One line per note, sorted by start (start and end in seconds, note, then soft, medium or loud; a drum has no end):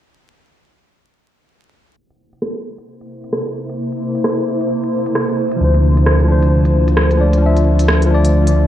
1.97 5.57 C3 medium
1.97 5.57 A#3 medium
1.97 5.57 E4 medium
1.97 8.67 C5 medium
2.10 closed hi-hat soft
2.33 closed hi-hat medium
2.42 cross-stick medium
2.56 closed hi-hat soft
2.78 closed hi-hat soft
3.01 closed hi-hat soft
3.24 closed hi-hat medium
3.33 cross-stick medium
3.47 closed hi-hat soft
3.70 closed hi-hat medium
3.92 closed hi-hat soft
4.15 closed hi-hat medium
4.24 cross-stick loud
4.38 closed hi-hat soft
4.61 closed hi-hat medium
4.84 closed hi-hat soft
5.06 closed hi-hat medium
5.15 cross-stick loud
5.29 closed hi-hat soft
5.52 closed hi-hat medium
5.56 8.67 D2 medium
5.56 8.67 D3 medium
5.56 6.23 F3 medium
5.56 8.67 A3 medium
5.56 6.26 D4 medium
5.56 8.67 F4 medium
5.64 6.29 C5 medium
5.74 closed hi-hat soft
5.97 closed hi-hat medium
6.06 cross-stick loud
6.20 7.15 F3 medium
6.20 closed hi-hat soft
6.28 7.17 D4 medium
6.28 7.19 C5 medium
6.42 closed hi-hat medium
6.65 closed hi-hat soft
6.88 closed hi-hat medium
6.97 cross-stick loud
7.11 closed hi-hat soft
7.17 7.34 F3 medium
7.17 7.35 D4 medium
7.17 7.36 D5 medium
7.33 closed hi-hat medium
7.38 8.05 F3 medium
7.38 8.08 D4 medium
7.46 8.10 E5 medium
7.57 closed hi-hat soft
7.79 closed hi-hat medium
7.88 cross-stick loud
8.02 closed hi-hat soft
8.06 8.67 F3 medium
8.10 8.67 D4 medium
8.10 8.67 D5 loud
8.25 closed hi-hat soft
8.47 closed hi-hat soft